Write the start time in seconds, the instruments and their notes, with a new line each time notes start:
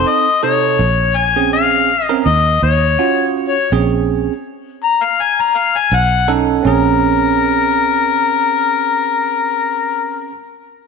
Already playing: tine electric piano C4 D#4 A4
0.08 harmonica D#5
0.43 tine electric piano C3 D#4 A4, harmonica C#5
0.79 fingered electric bass A#1
1.17 harmonica G#5
1.36 tine electric piano C4 C#4 G#4
1.53 harmonica F5
2.09 tine electric piano C4 C#4 A#4
2.26 fingered electric bass D#2, harmonica D#5
2.62 fingered electric bass D#2, harmonica C#5
2.99 tine electric piano C#4 F4 F#4
3.49 harmonica C#5
3.72 fingered electric bass A#1, tine electric piano C4 C#4 G#4
4.84 harmonica A#5
5.05 harmonica F5
5.21 harmonica G#5
5.41 harmonica A#5
5.57 harmonica F5
5.78 harmonica G#5
5.91 fingered electric bass B1, harmonica F#5
6.28 tine electric piano C#4 D#4 A4
6.63 fingered electric bass A#1, tine electric piano C4 C#4 G#4, harmonica A#4